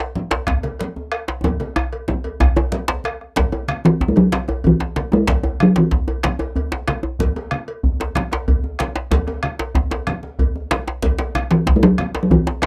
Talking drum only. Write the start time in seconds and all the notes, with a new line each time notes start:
3.85 E3
4.08 G#3
4.17 F#3
4.67 E3
5.13 G#3
5.63 F#3
5.78 E3
11.51 E3
11.76 G#3
11.83 F#3
12.23 F#3
12.31 E3